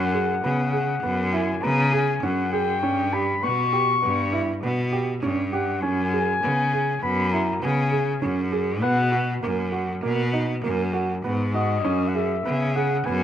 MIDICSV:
0, 0, Header, 1, 4, 480
1, 0, Start_track
1, 0, Tempo, 600601
1, 2266, Time_signature, 5, 2, 24, 8
1, 10577, End_track
2, 0, Start_track
2, 0, Title_t, "Clarinet"
2, 0, Program_c, 0, 71
2, 0, Note_on_c, 0, 78, 97
2, 556, Note_off_c, 0, 78, 0
2, 572, Note_on_c, 0, 78, 96
2, 1061, Note_on_c, 0, 80, 80
2, 1073, Note_off_c, 0, 78, 0
2, 1301, Note_on_c, 0, 82, 95
2, 1313, Note_off_c, 0, 80, 0
2, 1538, Note_off_c, 0, 82, 0
2, 1543, Note_on_c, 0, 80, 88
2, 1785, Note_on_c, 0, 78, 85
2, 1797, Note_off_c, 0, 80, 0
2, 2012, Note_off_c, 0, 78, 0
2, 2016, Note_on_c, 0, 79, 101
2, 2502, Note_on_c, 0, 83, 102
2, 2514, Note_off_c, 0, 79, 0
2, 2743, Note_on_c, 0, 85, 117
2, 2755, Note_off_c, 0, 83, 0
2, 3700, Note_off_c, 0, 85, 0
2, 4419, Note_on_c, 0, 78, 84
2, 4642, Note_off_c, 0, 78, 0
2, 4653, Note_on_c, 0, 80, 99
2, 5583, Note_off_c, 0, 80, 0
2, 5615, Note_on_c, 0, 83, 99
2, 5849, Note_on_c, 0, 82, 97
2, 5861, Note_off_c, 0, 83, 0
2, 6093, Note_off_c, 0, 82, 0
2, 6106, Note_on_c, 0, 80, 84
2, 6791, Note_off_c, 0, 80, 0
2, 7054, Note_on_c, 0, 78, 116
2, 7506, Note_off_c, 0, 78, 0
2, 9230, Note_on_c, 0, 75, 98
2, 9654, Note_on_c, 0, 78, 64
2, 9666, Note_off_c, 0, 75, 0
2, 9710, Note_on_c, 0, 76, 94
2, 9722, Note_off_c, 0, 78, 0
2, 10188, Note_off_c, 0, 76, 0
2, 10192, Note_on_c, 0, 78, 96
2, 10429, Note_on_c, 0, 80, 96
2, 10441, Note_off_c, 0, 78, 0
2, 10577, Note_off_c, 0, 80, 0
2, 10577, End_track
3, 0, Start_track
3, 0, Title_t, "Grand piano"
3, 0, Program_c, 1, 0
3, 112, Note_on_c, 1, 68, 75
3, 247, Note_off_c, 1, 68, 0
3, 350, Note_on_c, 1, 59, 81
3, 485, Note_off_c, 1, 59, 0
3, 585, Note_on_c, 1, 68, 72
3, 721, Note_off_c, 1, 68, 0
3, 823, Note_on_c, 1, 59, 82
3, 960, Note_off_c, 1, 59, 0
3, 1060, Note_on_c, 1, 64, 76
3, 1197, Note_off_c, 1, 64, 0
3, 1304, Note_on_c, 1, 59, 80
3, 1440, Note_off_c, 1, 59, 0
3, 1541, Note_on_c, 1, 68, 75
3, 1677, Note_off_c, 1, 68, 0
3, 1783, Note_on_c, 1, 61, 82
3, 1918, Note_off_c, 1, 61, 0
3, 2022, Note_on_c, 1, 68, 79
3, 2158, Note_off_c, 1, 68, 0
3, 2262, Note_on_c, 1, 61, 86
3, 2397, Note_off_c, 1, 61, 0
3, 2501, Note_on_c, 1, 67, 77
3, 2636, Note_off_c, 1, 67, 0
3, 2738, Note_on_c, 1, 59, 77
3, 2873, Note_off_c, 1, 59, 0
3, 2978, Note_on_c, 1, 67, 75
3, 3113, Note_off_c, 1, 67, 0
3, 3215, Note_on_c, 1, 59, 71
3, 3351, Note_off_c, 1, 59, 0
3, 3455, Note_on_c, 1, 64, 80
3, 3591, Note_off_c, 1, 64, 0
3, 3698, Note_on_c, 1, 59, 77
3, 3833, Note_off_c, 1, 59, 0
3, 3934, Note_on_c, 1, 67, 74
3, 4070, Note_off_c, 1, 67, 0
3, 4176, Note_on_c, 1, 61, 85
3, 4311, Note_off_c, 1, 61, 0
3, 4419, Note_on_c, 1, 67, 82
3, 4553, Note_off_c, 1, 67, 0
3, 4659, Note_on_c, 1, 61, 81
3, 4793, Note_off_c, 1, 61, 0
3, 4899, Note_on_c, 1, 68, 79
3, 5033, Note_off_c, 1, 68, 0
3, 5142, Note_on_c, 1, 59, 73
3, 5275, Note_off_c, 1, 59, 0
3, 5381, Note_on_c, 1, 68, 68
3, 5514, Note_off_c, 1, 68, 0
3, 5617, Note_on_c, 1, 59, 74
3, 5751, Note_off_c, 1, 59, 0
3, 5856, Note_on_c, 1, 64, 74
3, 5991, Note_off_c, 1, 64, 0
3, 6093, Note_on_c, 1, 59, 81
3, 6229, Note_off_c, 1, 59, 0
3, 6328, Note_on_c, 1, 68, 75
3, 6465, Note_off_c, 1, 68, 0
3, 6569, Note_on_c, 1, 61, 85
3, 6706, Note_off_c, 1, 61, 0
3, 6811, Note_on_c, 1, 68, 84
3, 6948, Note_off_c, 1, 68, 0
3, 7050, Note_on_c, 1, 59, 99
3, 7187, Note_off_c, 1, 59, 0
3, 7288, Note_on_c, 1, 66, 78
3, 7426, Note_off_c, 1, 66, 0
3, 7534, Note_on_c, 1, 58, 81
3, 7671, Note_off_c, 1, 58, 0
3, 7770, Note_on_c, 1, 66, 72
3, 7908, Note_off_c, 1, 66, 0
3, 8013, Note_on_c, 1, 58, 85
3, 8151, Note_off_c, 1, 58, 0
3, 8259, Note_on_c, 1, 63, 80
3, 8395, Note_off_c, 1, 63, 0
3, 8499, Note_on_c, 1, 58, 82
3, 8635, Note_off_c, 1, 58, 0
3, 8736, Note_on_c, 1, 66, 75
3, 8874, Note_off_c, 1, 66, 0
3, 8984, Note_on_c, 1, 59, 78
3, 9120, Note_off_c, 1, 59, 0
3, 9225, Note_on_c, 1, 66, 78
3, 9361, Note_off_c, 1, 66, 0
3, 9467, Note_on_c, 1, 61, 96
3, 9603, Note_off_c, 1, 61, 0
3, 9710, Note_on_c, 1, 68, 76
3, 9845, Note_off_c, 1, 68, 0
3, 9951, Note_on_c, 1, 59, 78
3, 10086, Note_off_c, 1, 59, 0
3, 10197, Note_on_c, 1, 68, 81
3, 10331, Note_off_c, 1, 68, 0
3, 10435, Note_on_c, 1, 59, 84
3, 10570, Note_off_c, 1, 59, 0
3, 10577, End_track
4, 0, Start_track
4, 0, Title_t, "Cello"
4, 0, Program_c, 2, 42
4, 0, Note_on_c, 2, 42, 109
4, 275, Note_off_c, 2, 42, 0
4, 350, Note_on_c, 2, 49, 85
4, 756, Note_off_c, 2, 49, 0
4, 817, Note_on_c, 2, 42, 100
4, 1227, Note_off_c, 2, 42, 0
4, 1299, Note_on_c, 2, 49, 102
4, 1708, Note_off_c, 2, 49, 0
4, 1778, Note_on_c, 2, 42, 89
4, 2256, Note_on_c, 2, 43, 98
4, 2268, Note_off_c, 2, 42, 0
4, 2664, Note_off_c, 2, 43, 0
4, 2737, Note_on_c, 2, 47, 92
4, 3144, Note_off_c, 2, 47, 0
4, 3216, Note_on_c, 2, 43, 106
4, 3623, Note_off_c, 2, 43, 0
4, 3699, Note_on_c, 2, 47, 96
4, 4104, Note_off_c, 2, 47, 0
4, 4174, Note_on_c, 2, 43, 87
4, 4654, Note_on_c, 2, 42, 105
4, 4666, Note_off_c, 2, 43, 0
4, 5061, Note_off_c, 2, 42, 0
4, 5134, Note_on_c, 2, 49, 86
4, 5541, Note_off_c, 2, 49, 0
4, 5607, Note_on_c, 2, 42, 107
4, 6017, Note_off_c, 2, 42, 0
4, 6089, Note_on_c, 2, 49, 98
4, 6499, Note_off_c, 2, 49, 0
4, 6567, Note_on_c, 2, 42, 93
4, 7054, Note_on_c, 2, 47, 111
4, 7066, Note_off_c, 2, 42, 0
4, 7463, Note_off_c, 2, 47, 0
4, 7537, Note_on_c, 2, 42, 90
4, 7946, Note_off_c, 2, 42, 0
4, 8017, Note_on_c, 2, 47, 106
4, 8427, Note_off_c, 2, 47, 0
4, 8504, Note_on_c, 2, 42, 100
4, 8911, Note_off_c, 2, 42, 0
4, 8986, Note_on_c, 2, 44, 97
4, 9469, Note_on_c, 2, 42, 103
4, 9481, Note_off_c, 2, 44, 0
4, 9876, Note_off_c, 2, 42, 0
4, 9952, Note_on_c, 2, 49, 90
4, 10359, Note_off_c, 2, 49, 0
4, 10439, Note_on_c, 2, 42, 110
4, 10577, Note_off_c, 2, 42, 0
4, 10577, End_track
0, 0, End_of_file